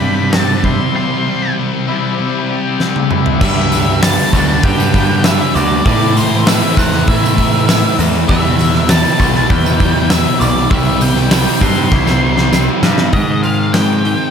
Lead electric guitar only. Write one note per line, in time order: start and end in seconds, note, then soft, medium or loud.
0.00 0.39 B5 loud
0.39 0.65 A5 loud
0.65 0.95 C6 loud
0.96 1.53 C6 medium
3.41 4.05 E5 loud
4.03 4.63 A5 loud
4.64 5.27 G5 loud
5.24 5.55 E5 loud
5.55 5.85 D5 medium
5.86 6.17 D5 loud
6.17 6.48 C5 medium
6.48 6.79 E5 medium
6.78 7.06 F#5 medium
7.08 7.95 E5 medium
8.29 8.91 E5 medium
8.89 9.50 A5 loud
9.50 10.13 G5 medium
10.10 10.39 E5 loud
10.40 10.70 D5 medium
10.71 10.99 E5 loud
11.02 11.31 G5 loud
11.32 11.63 G5 medium
11.62 12.79 C6 loud
13.13 13.42 D#5 medium
13.43 13.75 F5 loud
13.73 14.30 G5 medium